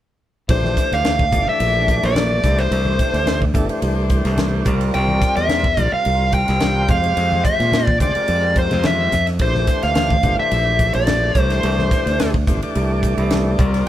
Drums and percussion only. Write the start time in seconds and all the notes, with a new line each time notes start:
0.49 kick, ride
0.63 snare, high conga
0.77 kick, snare, hi-hat pedal, ride
0.92 snare, ride
1.04 snare, ride, high conga
1.19 kick, high conga
1.32 kick, hi-hat pedal, ride, low conga
1.60 ride
1.88 kick, snare, hi-hat pedal, ride
2.03 snare, ride
2.16 snare, ride, high conga
2.43 kick, snare, hi-hat pedal, ride, low conga
2.58 snare, ride
2.72 ride
2.85 high conga
2.99 kick, snare, hi-hat pedal, ride
3.14 snare, ride
3.26 snare, ride, high conga
3.40 kick, high conga
3.54 kick, hi-hat pedal, ride, low conga
3.69 ride
3.82 ride
4.10 kick, hi-hat pedal, ride
4.25 snare, ride
4.38 snare, ride, high conga
4.65 kick, hi-hat pedal, ride, low conga
4.81 ride
4.94 ride
5.08 high conga
5.22 kick, snare, hi-hat pedal, ride
5.36 snare, ride
5.49 snare, ride, high conga
5.63 kick, high conga
5.77 kick, hi-hat pedal, ride, low conga
6.05 ride
6.32 kick, hi-hat pedal, ride
6.48 snare, ride
6.60 snare, ride, high conga
6.88 kick, hi-hat pedal, ride, low conga
7.04 ride
7.17 ride
7.32 high conga
7.45 kick, hi-hat pedal, ride, high conga
7.60 snare, ride
7.72 snare, ride, high conga
7.87 kick, high conga
8.00 kick, hi-hat pedal, ride, low conga
8.15 ride
8.28 ride
8.56 kick, hi-hat pedal, ride
8.71 snare, ride, low conga
8.83 snare, ride, high conga
9.12 snare, hi-hat pedal, ride, low conga
9.27 snare, ride
9.39 kick, ride
9.55 snare, high conga
9.67 kick, snare, hi-hat pedal, ride
9.82 snare, ride
9.95 snare, ride, high conga
10.10 kick, high conga
10.23 kick, hi-hat pedal, ride, low conga
10.51 ride
10.79 kick, hi-hat pedal, ride
10.93 ride
11.07 snare, ride, high conga
11.35 kick, snare, hi-hat pedal, ride, low conga
11.50 snare, ride
11.63 ride
11.79 snare, high conga
11.91 kick, snare, hi-hat pedal, ride
12.07 snare, ride
12.20 snare, ride, high conga
12.34 kick, high conga
12.47 kick, hi-hat pedal, ride, low conga
12.62 ride
12.75 ride
13.03 kick, hi-hat pedal, ride
13.18 ride
13.30 snare, ride, high conga
13.59 kick, hi-hat pedal, ride, low conga
13.74 snare, ride